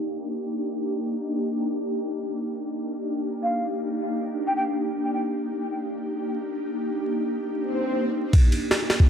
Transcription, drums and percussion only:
0, 0, Header, 1, 2, 480
1, 0, Start_track
1, 0, Tempo, 500000
1, 8730, End_track
2, 0, Start_track
2, 0, Title_t, "Drums"
2, 7999, Note_on_c, 9, 36, 105
2, 7999, Note_on_c, 9, 51, 85
2, 8095, Note_off_c, 9, 36, 0
2, 8095, Note_off_c, 9, 51, 0
2, 8180, Note_on_c, 9, 51, 68
2, 8276, Note_off_c, 9, 51, 0
2, 8361, Note_on_c, 9, 38, 109
2, 8361, Note_on_c, 9, 51, 85
2, 8457, Note_off_c, 9, 38, 0
2, 8457, Note_off_c, 9, 51, 0
2, 8543, Note_on_c, 9, 38, 97
2, 8543, Note_on_c, 9, 51, 77
2, 8639, Note_off_c, 9, 38, 0
2, 8639, Note_off_c, 9, 51, 0
2, 8639, Note_on_c, 9, 36, 81
2, 8730, Note_off_c, 9, 36, 0
2, 8730, End_track
0, 0, End_of_file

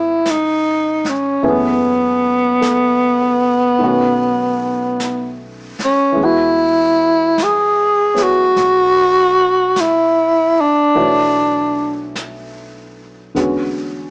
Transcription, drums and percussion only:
0, 0, Header, 1, 2, 480
1, 0, Start_track
1, 0, Tempo, 1188119
1, 577, Time_signature, 4, 2, 24, 8
1, 3458, Tempo, 1202405
1, 5671, End_track
2, 0, Start_track
2, 0, Title_t, "Drums"
2, 103, Note_on_c, 9, 25, 29
2, 103, Note_on_c, 9, 38, 34
2, 103, Note_on_c, 9, 44, 43
2, 144, Note_off_c, 9, 38, 0
2, 144, Note_off_c, 9, 44, 0
2, 422, Note_on_c, 9, 38, 20
2, 463, Note_off_c, 9, 38, 0
2, 582, Note_off_c, 9, 25, 0
2, 582, Note_on_c, 9, 25, 29
2, 1059, Note_off_c, 9, 25, 0
2, 1059, Note_on_c, 9, 25, 25
2, 1059, Note_on_c, 9, 38, 31
2, 1059, Note_on_c, 9, 44, 37
2, 1100, Note_off_c, 9, 38, 0
2, 1100, Note_off_c, 9, 44, 0
2, 1538, Note_off_c, 9, 25, 0
2, 1538, Note_on_c, 9, 25, 29
2, 2019, Note_off_c, 9, 25, 0
2, 2019, Note_on_c, 9, 25, 25
2, 2019, Note_on_c, 9, 38, 32
2, 2019, Note_on_c, 9, 44, 39
2, 2060, Note_off_c, 9, 38, 0
2, 2060, Note_off_c, 9, 44, 0
2, 2338, Note_on_c, 9, 38, 20
2, 2379, Note_off_c, 9, 38, 0
2, 2498, Note_off_c, 9, 25, 0
2, 2498, Note_on_c, 9, 25, 26
2, 2981, Note_off_c, 9, 25, 0
2, 2981, Note_on_c, 9, 25, 25
2, 2981, Note_on_c, 9, 38, 30
2, 2981, Note_on_c, 9, 44, 39
2, 3021, Note_off_c, 9, 38, 0
2, 3021, Note_off_c, 9, 44, 0
2, 3298, Note_on_c, 9, 38, 19
2, 3338, Note_off_c, 9, 38, 0
2, 3460, Note_off_c, 9, 25, 0
2, 3460, Note_on_c, 9, 25, 23
2, 3460, Note_on_c, 9, 38, 21
2, 3500, Note_off_c, 9, 38, 0
2, 3937, Note_off_c, 9, 25, 0
2, 3937, Note_on_c, 9, 25, 29
2, 3937, Note_on_c, 9, 38, 33
2, 3937, Note_on_c, 9, 44, 44
2, 3977, Note_off_c, 9, 38, 0
2, 3977, Note_off_c, 9, 44, 0
2, 4414, Note_off_c, 9, 25, 0
2, 4414, Note_on_c, 9, 25, 29
2, 4893, Note_off_c, 9, 25, 0
2, 4893, Note_on_c, 9, 25, 25
2, 4893, Note_on_c, 9, 38, 32
2, 4893, Note_on_c, 9, 44, 45
2, 4933, Note_off_c, 9, 38, 0
2, 4933, Note_off_c, 9, 44, 0
2, 5375, Note_off_c, 9, 25, 0
2, 5375, Note_on_c, 9, 25, 25
2, 5375, Note_on_c, 9, 38, 21
2, 5415, Note_off_c, 9, 38, 0
2, 5671, Note_off_c, 9, 25, 0
2, 5671, End_track
0, 0, End_of_file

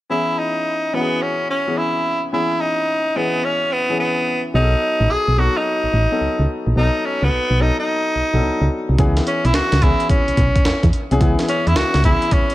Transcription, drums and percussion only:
0, 0, Header, 1, 2, 480
1, 0, Start_track
1, 0, Key_signature, 4, "minor"
1, 0, Tempo, 555556
1, 83, Time_signature, 4, 2, 24, 8
1, 10841, End_track
2, 0, Start_track
2, 0, Title_t, "Drums"
2, 7763, Note_on_c, 9, 36, 97
2, 7763, Note_on_c, 9, 42, 60
2, 7849, Note_off_c, 9, 42, 0
2, 7850, Note_off_c, 9, 36, 0
2, 7920, Note_on_c, 9, 42, 53
2, 7922, Note_on_c, 9, 38, 63
2, 8006, Note_off_c, 9, 42, 0
2, 8007, Note_on_c, 9, 42, 73
2, 8008, Note_off_c, 9, 38, 0
2, 8093, Note_off_c, 9, 42, 0
2, 8162, Note_on_c, 9, 42, 44
2, 8241, Note_on_c, 9, 38, 119
2, 8242, Note_off_c, 9, 42, 0
2, 8242, Note_on_c, 9, 42, 71
2, 8328, Note_off_c, 9, 38, 0
2, 8328, Note_off_c, 9, 42, 0
2, 8399, Note_on_c, 9, 42, 52
2, 8400, Note_on_c, 9, 38, 61
2, 8483, Note_off_c, 9, 42, 0
2, 8483, Note_on_c, 9, 42, 72
2, 8484, Note_on_c, 9, 36, 80
2, 8486, Note_off_c, 9, 38, 0
2, 8569, Note_off_c, 9, 42, 0
2, 8571, Note_off_c, 9, 36, 0
2, 8640, Note_on_c, 9, 42, 49
2, 8722, Note_off_c, 9, 42, 0
2, 8722, Note_on_c, 9, 36, 86
2, 8722, Note_on_c, 9, 42, 69
2, 8808, Note_off_c, 9, 36, 0
2, 8809, Note_off_c, 9, 42, 0
2, 8882, Note_on_c, 9, 42, 51
2, 8962, Note_on_c, 9, 36, 94
2, 8963, Note_off_c, 9, 42, 0
2, 8963, Note_on_c, 9, 42, 69
2, 9049, Note_off_c, 9, 36, 0
2, 9049, Note_off_c, 9, 42, 0
2, 9120, Note_on_c, 9, 42, 59
2, 9121, Note_on_c, 9, 36, 99
2, 9203, Note_off_c, 9, 42, 0
2, 9203, Note_on_c, 9, 38, 109
2, 9203, Note_on_c, 9, 42, 72
2, 9207, Note_off_c, 9, 36, 0
2, 9289, Note_off_c, 9, 38, 0
2, 9289, Note_off_c, 9, 42, 0
2, 9359, Note_on_c, 9, 36, 88
2, 9359, Note_on_c, 9, 42, 50
2, 9444, Note_off_c, 9, 42, 0
2, 9444, Note_on_c, 9, 42, 70
2, 9445, Note_off_c, 9, 36, 0
2, 9530, Note_off_c, 9, 42, 0
2, 9601, Note_on_c, 9, 42, 44
2, 9683, Note_off_c, 9, 42, 0
2, 9683, Note_on_c, 9, 36, 107
2, 9683, Note_on_c, 9, 42, 63
2, 9769, Note_off_c, 9, 36, 0
2, 9769, Note_off_c, 9, 42, 0
2, 9839, Note_on_c, 9, 42, 51
2, 9841, Note_on_c, 9, 38, 66
2, 9923, Note_off_c, 9, 42, 0
2, 9923, Note_on_c, 9, 42, 75
2, 9928, Note_off_c, 9, 38, 0
2, 10010, Note_off_c, 9, 42, 0
2, 10081, Note_on_c, 9, 42, 47
2, 10160, Note_off_c, 9, 42, 0
2, 10160, Note_on_c, 9, 38, 112
2, 10160, Note_on_c, 9, 42, 70
2, 10246, Note_off_c, 9, 38, 0
2, 10247, Note_off_c, 9, 42, 0
2, 10317, Note_on_c, 9, 38, 62
2, 10317, Note_on_c, 9, 42, 49
2, 10401, Note_off_c, 9, 42, 0
2, 10401, Note_on_c, 9, 42, 65
2, 10403, Note_on_c, 9, 36, 82
2, 10404, Note_off_c, 9, 38, 0
2, 10487, Note_off_c, 9, 42, 0
2, 10490, Note_off_c, 9, 36, 0
2, 10557, Note_on_c, 9, 42, 46
2, 10639, Note_off_c, 9, 42, 0
2, 10639, Note_on_c, 9, 42, 73
2, 10640, Note_on_c, 9, 36, 87
2, 10725, Note_off_c, 9, 42, 0
2, 10727, Note_off_c, 9, 36, 0
2, 10799, Note_on_c, 9, 42, 50
2, 10841, Note_off_c, 9, 42, 0
2, 10841, End_track
0, 0, End_of_file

